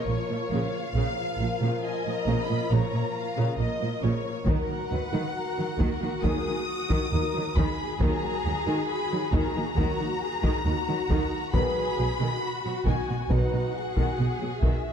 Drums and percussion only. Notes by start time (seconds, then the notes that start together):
4.47 taiko
5.80 taiko
6.23 taiko
6.90 taiko
7.57 taiko
8.01 taiko
9.33 taiko
9.78 taiko
10.44 taiko
11.10 taiko
11.54 taiko
12.86 taiko
13.30 taiko
13.97 taiko
14.62 taiko